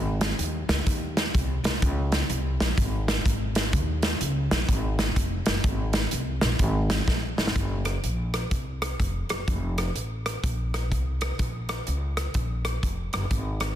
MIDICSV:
0, 0, Header, 1, 3, 480
1, 0, Start_track
1, 0, Tempo, 478469
1, 1831, Time_signature, 4, 2, 24, 8
1, 13798, End_track
2, 0, Start_track
2, 0, Title_t, "Upright bass"
2, 0, Program_c, 0, 32
2, 0, Note_on_c, 0, 32, 91
2, 322, Note_off_c, 0, 32, 0
2, 388, Note_on_c, 0, 39, 96
2, 650, Note_off_c, 0, 39, 0
2, 689, Note_on_c, 0, 37, 94
2, 842, Note_off_c, 0, 37, 0
2, 866, Note_on_c, 0, 39, 98
2, 1276, Note_off_c, 0, 39, 0
2, 1346, Note_on_c, 0, 36, 92
2, 1607, Note_off_c, 0, 36, 0
2, 1641, Note_on_c, 0, 36, 83
2, 1796, Note_off_c, 0, 36, 0
2, 1831, Note_on_c, 0, 37, 104
2, 2237, Note_off_c, 0, 37, 0
2, 2302, Note_on_c, 0, 36, 101
2, 2563, Note_off_c, 0, 36, 0
2, 2611, Note_on_c, 0, 34, 91
2, 2760, Note_off_c, 0, 34, 0
2, 2785, Note_on_c, 0, 32, 99
2, 3192, Note_off_c, 0, 32, 0
2, 3265, Note_on_c, 0, 32, 88
2, 3742, Note_on_c, 0, 39, 93
2, 3757, Note_off_c, 0, 32, 0
2, 4149, Note_off_c, 0, 39, 0
2, 4219, Note_on_c, 0, 37, 93
2, 4478, Note_off_c, 0, 37, 0
2, 4527, Note_on_c, 0, 34, 82
2, 4674, Note_off_c, 0, 34, 0
2, 4698, Note_on_c, 0, 32, 97
2, 5105, Note_off_c, 0, 32, 0
2, 5182, Note_on_c, 0, 29, 88
2, 5439, Note_off_c, 0, 29, 0
2, 5491, Note_on_c, 0, 30, 78
2, 5636, Note_off_c, 0, 30, 0
2, 5661, Note_on_c, 0, 32, 90
2, 6066, Note_off_c, 0, 32, 0
2, 6145, Note_on_c, 0, 36, 83
2, 6399, Note_off_c, 0, 36, 0
2, 6441, Note_on_c, 0, 34, 99
2, 6590, Note_off_c, 0, 34, 0
2, 6614, Note_on_c, 0, 32, 105
2, 7022, Note_off_c, 0, 32, 0
2, 7097, Note_on_c, 0, 34, 82
2, 7356, Note_off_c, 0, 34, 0
2, 7396, Note_on_c, 0, 32, 78
2, 7547, Note_off_c, 0, 32, 0
2, 7578, Note_on_c, 0, 30, 80
2, 7986, Note_off_c, 0, 30, 0
2, 8060, Note_on_c, 0, 34, 84
2, 8468, Note_off_c, 0, 34, 0
2, 8542, Note_on_c, 0, 36, 78
2, 8950, Note_off_c, 0, 36, 0
2, 9023, Note_on_c, 0, 29, 76
2, 9282, Note_off_c, 0, 29, 0
2, 9331, Note_on_c, 0, 30, 74
2, 9478, Note_off_c, 0, 30, 0
2, 9508, Note_on_c, 0, 29, 80
2, 9915, Note_off_c, 0, 29, 0
2, 9984, Note_on_c, 0, 33, 76
2, 10393, Note_off_c, 0, 33, 0
2, 10467, Note_on_c, 0, 34, 87
2, 10949, Note_off_c, 0, 34, 0
2, 10949, Note_on_c, 0, 36, 74
2, 11358, Note_off_c, 0, 36, 0
2, 11426, Note_on_c, 0, 34, 73
2, 11837, Note_off_c, 0, 34, 0
2, 11915, Note_on_c, 0, 37, 82
2, 12322, Note_off_c, 0, 37, 0
2, 12387, Note_on_c, 0, 34, 83
2, 12798, Note_off_c, 0, 34, 0
2, 12872, Note_on_c, 0, 29, 69
2, 13132, Note_off_c, 0, 29, 0
2, 13176, Note_on_c, 0, 30, 74
2, 13326, Note_off_c, 0, 30, 0
2, 13350, Note_on_c, 0, 32, 86
2, 13759, Note_off_c, 0, 32, 0
2, 13798, End_track
3, 0, Start_track
3, 0, Title_t, "Drums"
3, 210, Note_on_c, 9, 42, 73
3, 214, Note_on_c, 9, 38, 112
3, 310, Note_off_c, 9, 42, 0
3, 315, Note_off_c, 9, 38, 0
3, 392, Note_on_c, 9, 42, 83
3, 493, Note_off_c, 9, 42, 0
3, 694, Note_on_c, 9, 38, 104
3, 696, Note_on_c, 9, 42, 76
3, 794, Note_off_c, 9, 38, 0
3, 796, Note_off_c, 9, 42, 0
3, 869, Note_on_c, 9, 42, 97
3, 870, Note_on_c, 9, 36, 98
3, 969, Note_off_c, 9, 42, 0
3, 970, Note_off_c, 9, 36, 0
3, 1174, Note_on_c, 9, 38, 93
3, 1174, Note_on_c, 9, 42, 74
3, 1274, Note_off_c, 9, 38, 0
3, 1274, Note_off_c, 9, 42, 0
3, 1351, Note_on_c, 9, 36, 93
3, 1356, Note_on_c, 9, 42, 88
3, 1451, Note_off_c, 9, 36, 0
3, 1456, Note_off_c, 9, 42, 0
3, 1649, Note_on_c, 9, 42, 76
3, 1657, Note_on_c, 9, 38, 110
3, 1749, Note_off_c, 9, 42, 0
3, 1758, Note_off_c, 9, 38, 0
3, 1829, Note_on_c, 9, 36, 116
3, 1830, Note_on_c, 9, 42, 94
3, 1929, Note_off_c, 9, 36, 0
3, 1930, Note_off_c, 9, 42, 0
3, 2126, Note_on_c, 9, 42, 70
3, 2131, Note_on_c, 9, 38, 107
3, 2227, Note_off_c, 9, 42, 0
3, 2231, Note_off_c, 9, 38, 0
3, 2304, Note_on_c, 9, 42, 80
3, 2404, Note_off_c, 9, 42, 0
3, 2613, Note_on_c, 9, 38, 105
3, 2615, Note_on_c, 9, 42, 73
3, 2713, Note_off_c, 9, 38, 0
3, 2715, Note_off_c, 9, 42, 0
3, 2785, Note_on_c, 9, 36, 108
3, 2786, Note_on_c, 9, 42, 96
3, 2885, Note_off_c, 9, 36, 0
3, 2887, Note_off_c, 9, 42, 0
3, 3093, Note_on_c, 9, 38, 107
3, 3093, Note_on_c, 9, 42, 75
3, 3193, Note_off_c, 9, 38, 0
3, 3193, Note_off_c, 9, 42, 0
3, 3266, Note_on_c, 9, 36, 96
3, 3274, Note_on_c, 9, 42, 93
3, 3367, Note_off_c, 9, 36, 0
3, 3374, Note_off_c, 9, 42, 0
3, 3564, Note_on_c, 9, 42, 84
3, 3573, Note_on_c, 9, 38, 114
3, 3665, Note_off_c, 9, 42, 0
3, 3674, Note_off_c, 9, 38, 0
3, 3743, Note_on_c, 9, 42, 89
3, 3744, Note_on_c, 9, 36, 121
3, 3843, Note_off_c, 9, 42, 0
3, 3844, Note_off_c, 9, 36, 0
3, 4038, Note_on_c, 9, 42, 76
3, 4043, Note_on_c, 9, 38, 113
3, 4139, Note_off_c, 9, 42, 0
3, 4143, Note_off_c, 9, 38, 0
3, 4222, Note_on_c, 9, 42, 85
3, 4323, Note_off_c, 9, 42, 0
3, 4528, Note_on_c, 9, 38, 100
3, 4530, Note_on_c, 9, 42, 70
3, 4628, Note_off_c, 9, 38, 0
3, 4630, Note_off_c, 9, 42, 0
3, 4701, Note_on_c, 9, 36, 102
3, 4703, Note_on_c, 9, 42, 92
3, 4801, Note_off_c, 9, 36, 0
3, 4803, Note_off_c, 9, 42, 0
3, 5004, Note_on_c, 9, 38, 109
3, 5004, Note_on_c, 9, 42, 78
3, 5105, Note_off_c, 9, 38, 0
3, 5105, Note_off_c, 9, 42, 0
3, 5180, Note_on_c, 9, 36, 96
3, 5182, Note_on_c, 9, 42, 91
3, 5280, Note_off_c, 9, 36, 0
3, 5282, Note_off_c, 9, 42, 0
3, 5474, Note_on_c, 9, 42, 86
3, 5483, Note_on_c, 9, 38, 105
3, 5574, Note_off_c, 9, 42, 0
3, 5583, Note_off_c, 9, 38, 0
3, 5657, Note_on_c, 9, 42, 89
3, 5658, Note_on_c, 9, 36, 113
3, 5757, Note_off_c, 9, 42, 0
3, 5759, Note_off_c, 9, 36, 0
3, 5950, Note_on_c, 9, 42, 72
3, 5955, Note_on_c, 9, 38, 103
3, 6051, Note_off_c, 9, 42, 0
3, 6055, Note_off_c, 9, 38, 0
3, 6132, Note_on_c, 9, 42, 86
3, 6232, Note_off_c, 9, 42, 0
3, 6435, Note_on_c, 9, 38, 99
3, 6437, Note_on_c, 9, 42, 71
3, 6535, Note_off_c, 9, 38, 0
3, 6537, Note_off_c, 9, 42, 0
3, 6613, Note_on_c, 9, 42, 103
3, 6615, Note_on_c, 9, 36, 107
3, 6714, Note_off_c, 9, 42, 0
3, 6716, Note_off_c, 9, 36, 0
3, 6921, Note_on_c, 9, 38, 105
3, 6921, Note_on_c, 9, 42, 76
3, 7021, Note_off_c, 9, 38, 0
3, 7021, Note_off_c, 9, 42, 0
3, 7099, Note_on_c, 9, 36, 98
3, 7101, Note_on_c, 9, 38, 61
3, 7199, Note_off_c, 9, 36, 0
3, 7201, Note_off_c, 9, 38, 0
3, 7405, Note_on_c, 9, 38, 91
3, 7497, Note_off_c, 9, 38, 0
3, 7497, Note_on_c, 9, 38, 95
3, 7581, Note_on_c, 9, 36, 98
3, 7583, Note_on_c, 9, 42, 76
3, 7597, Note_off_c, 9, 38, 0
3, 7681, Note_off_c, 9, 36, 0
3, 7683, Note_off_c, 9, 42, 0
3, 7876, Note_on_c, 9, 42, 65
3, 7880, Note_on_c, 9, 37, 88
3, 7976, Note_off_c, 9, 42, 0
3, 7981, Note_off_c, 9, 37, 0
3, 8063, Note_on_c, 9, 42, 78
3, 8163, Note_off_c, 9, 42, 0
3, 8365, Note_on_c, 9, 37, 92
3, 8367, Note_on_c, 9, 42, 61
3, 8465, Note_off_c, 9, 37, 0
3, 8467, Note_off_c, 9, 42, 0
3, 8539, Note_on_c, 9, 42, 80
3, 8541, Note_on_c, 9, 36, 86
3, 8639, Note_off_c, 9, 42, 0
3, 8641, Note_off_c, 9, 36, 0
3, 8848, Note_on_c, 9, 37, 91
3, 8848, Note_on_c, 9, 42, 67
3, 8948, Note_off_c, 9, 37, 0
3, 8948, Note_off_c, 9, 42, 0
3, 9025, Note_on_c, 9, 36, 86
3, 9029, Note_on_c, 9, 42, 83
3, 9125, Note_off_c, 9, 36, 0
3, 9129, Note_off_c, 9, 42, 0
3, 9323, Note_on_c, 9, 42, 74
3, 9332, Note_on_c, 9, 37, 98
3, 9424, Note_off_c, 9, 42, 0
3, 9433, Note_off_c, 9, 37, 0
3, 9508, Note_on_c, 9, 36, 104
3, 9508, Note_on_c, 9, 42, 76
3, 9608, Note_off_c, 9, 36, 0
3, 9608, Note_off_c, 9, 42, 0
3, 9809, Note_on_c, 9, 42, 63
3, 9814, Note_on_c, 9, 37, 96
3, 9910, Note_off_c, 9, 42, 0
3, 9914, Note_off_c, 9, 37, 0
3, 9987, Note_on_c, 9, 42, 69
3, 10087, Note_off_c, 9, 42, 0
3, 10292, Note_on_c, 9, 37, 89
3, 10294, Note_on_c, 9, 42, 64
3, 10392, Note_off_c, 9, 37, 0
3, 10394, Note_off_c, 9, 42, 0
3, 10469, Note_on_c, 9, 36, 88
3, 10471, Note_on_c, 9, 42, 80
3, 10570, Note_off_c, 9, 36, 0
3, 10572, Note_off_c, 9, 42, 0
3, 10775, Note_on_c, 9, 37, 85
3, 10775, Note_on_c, 9, 42, 62
3, 10876, Note_off_c, 9, 37, 0
3, 10876, Note_off_c, 9, 42, 0
3, 10951, Note_on_c, 9, 36, 82
3, 10952, Note_on_c, 9, 42, 75
3, 11051, Note_off_c, 9, 36, 0
3, 11053, Note_off_c, 9, 42, 0
3, 11245, Note_on_c, 9, 42, 72
3, 11254, Note_on_c, 9, 37, 107
3, 11345, Note_off_c, 9, 42, 0
3, 11354, Note_off_c, 9, 37, 0
3, 11428, Note_on_c, 9, 42, 79
3, 11431, Note_on_c, 9, 36, 92
3, 11528, Note_off_c, 9, 42, 0
3, 11531, Note_off_c, 9, 36, 0
3, 11725, Note_on_c, 9, 42, 69
3, 11730, Note_on_c, 9, 37, 97
3, 11826, Note_off_c, 9, 42, 0
3, 11830, Note_off_c, 9, 37, 0
3, 11906, Note_on_c, 9, 42, 71
3, 12006, Note_off_c, 9, 42, 0
3, 12210, Note_on_c, 9, 37, 94
3, 12212, Note_on_c, 9, 42, 63
3, 12310, Note_off_c, 9, 37, 0
3, 12312, Note_off_c, 9, 42, 0
3, 12381, Note_on_c, 9, 42, 81
3, 12388, Note_on_c, 9, 36, 81
3, 12482, Note_off_c, 9, 42, 0
3, 12489, Note_off_c, 9, 36, 0
3, 12689, Note_on_c, 9, 37, 95
3, 12689, Note_on_c, 9, 42, 64
3, 12789, Note_off_c, 9, 37, 0
3, 12789, Note_off_c, 9, 42, 0
3, 12871, Note_on_c, 9, 36, 84
3, 12872, Note_on_c, 9, 42, 82
3, 12971, Note_off_c, 9, 36, 0
3, 12972, Note_off_c, 9, 42, 0
3, 13171, Note_on_c, 9, 42, 71
3, 13180, Note_on_c, 9, 37, 105
3, 13271, Note_off_c, 9, 42, 0
3, 13280, Note_off_c, 9, 37, 0
3, 13350, Note_on_c, 9, 42, 82
3, 13351, Note_on_c, 9, 36, 88
3, 13450, Note_off_c, 9, 42, 0
3, 13452, Note_off_c, 9, 36, 0
3, 13646, Note_on_c, 9, 42, 67
3, 13651, Note_on_c, 9, 37, 95
3, 13747, Note_off_c, 9, 42, 0
3, 13751, Note_off_c, 9, 37, 0
3, 13798, End_track
0, 0, End_of_file